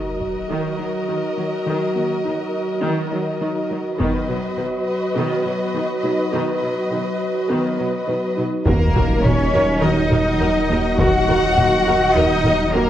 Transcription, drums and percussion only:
0.21 taiko
4.00 taiko
8.66 taiko
8.96 taiko mid
9.25 taiko mid
10.12 taiko mid
10.99 taiko
11.28 taiko mid
11.58 taiko mid
12.45 taiko mid

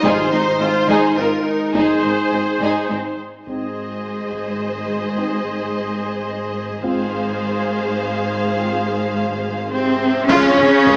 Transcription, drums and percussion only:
0.04 taiko
1.75 taiko
3.47 taiko
4.32 taiko
6.85 taiko
10.29 concert bass drum, taiko, crash
10.59 taiko low-mid
10.86 taiko low-mid

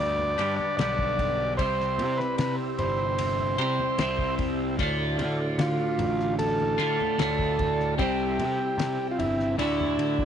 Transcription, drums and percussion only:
0.19 high conga
0.39 ride
0.59 high conga
0.79 snare, ride
0.99 kick
1.19 kick, ride, low conga
1.59 kick, ride
1.80 snare
1.99 ride, high conga
2.20 snare
2.38 snare, ride
2.79 ride, low conga
3.19 ride, high conga
3.39 high conga
3.58 ride
3.79 high conga
3.98 snare, ride
4.19 kick
4.39 kick, ride, low conga
4.79 kick, ride
5.19 ride, high conga
5.59 snare, ride
5.99 ride, low conga
6.20 snare
6.39 ride, high conga
6.60 high conga
6.79 ride
7.01 high conga
7.19 snare, ride
7.39 kick
7.59 kick, ride, low conga
7.80 snare
7.99 kick, ride
8.39 ride, high conga
8.79 snare, ride
9.19 ride, low conga
9.40 snare
9.59 ride, high conga
9.81 high conga, low conga
9.99 ride
10.19 kick, high conga

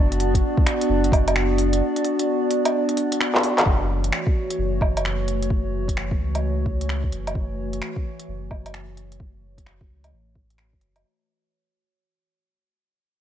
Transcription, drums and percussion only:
0.12 closed hi-hat
0.20 open hi-hat
0.34 kick, closed hi-hat
0.57 kick
0.67 finger snap, open hi-hat
0.81 closed hi-hat
1.04 closed hi-hat
1.12 kick, open hi-hat, low woodblock
1.28 closed hi-hat, low woodblock
1.36 finger snap
1.58 open hi-hat
1.73 closed hi-hat
1.96 closed hi-hat
2.05 open hi-hat
2.19 closed hi-hat
2.51 open hi-hat
2.65 closed hi-hat, low woodblock
2.89 closed hi-hat
2.97 open hi-hat
3.12 closed hi-hat
3.21 finger snap
3.35 clap
3.43 open hi-hat
3.58 clap, closed hi-hat, low woodblock
3.66 kick
4.04 closed hi-hat
4.12 finger snap
4.27 kick
4.50 closed hi-hat
4.81 kick, low woodblock
4.97 closed hi-hat, low woodblock
5.05 finger snap
5.28 closed hi-hat
5.43 closed hi-hat
5.50 kick
5.88 kick, closed hi-hat
5.97 finger snap
6.11 kick
6.35 closed hi-hat, low woodblock
6.66 kick
6.81 closed hi-hat
6.89 finger snap
7.04 kick
7.12 closed hi-hat
7.27 closed hi-hat, low woodblock
7.35 kick
7.73 closed hi-hat
7.82 finger snap
7.96 kick
8.20 closed hi-hat
8.51 kick, low woodblock
8.66 closed hi-hat, low woodblock
8.74 finger snap
8.97 closed hi-hat
9.12 closed hi-hat
9.20 kick
9.58 kick, closed hi-hat
9.66 finger snap
9.81 kick
10.04 closed hi-hat, low woodblock
10.35 kick
10.50 closed hi-hat
10.58 finger snap
10.73 kick
10.81 closed hi-hat
10.96 closed hi-hat, low woodblock

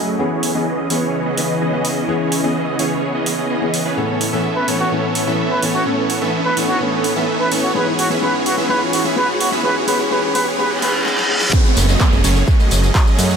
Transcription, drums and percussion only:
0.43 open hi-hat
0.90 open hi-hat
1.38 open hi-hat
1.85 open hi-hat
2.32 open hi-hat
2.79 open hi-hat
3.26 open hi-hat
3.74 open hi-hat
4.21 open hi-hat
4.68 open hi-hat
5.15 open hi-hat
5.63 open hi-hat
6.10 open hi-hat
6.57 open hi-hat
7.04 open hi-hat
7.52 open hi-hat
7.99 open hi-hat
8.46 open hi-hat
8.93 open hi-hat
9.41 open hi-hat
9.88 open hi-hat
10.35 open hi-hat
10.82 open hi-hat
11.06 snare
11.18 snare
11.41 snare
11.53 kick, crash, tambourine
11.65 tambourine
11.77 open hi-hat, tambourine
11.89 tambourine
12.00 kick, clap, tambourine
12.13 tambourine
12.24 open hi-hat, tambourine
12.36 tambourine
12.48 kick, tambourine
12.60 tambourine
12.71 open hi-hat, tambourine
12.84 tambourine
12.95 kick, clap, tambourine
13.07 tambourine
13.19 open hi-hat, tambourine
13.31 tambourine

